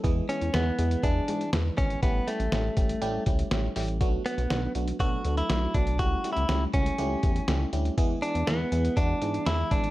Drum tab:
HH |x-xxx-xxx-xxx-xx|x-xxx-xxx-xxx-ox|x-xxx-xxx-xxx-xx|x-xxx-xxx-xxx-xx|
SD |----o-------o---|----o-------o---|----o-------o---|----o-------o---|
BD |o-------o-----o-|o-----o---o-----|o-------o-----o-|o-----o---o-----|

HH |x-xxx-xxx-xxx-xx|
SD |----o-------o---|
BD |o-------o-----o-|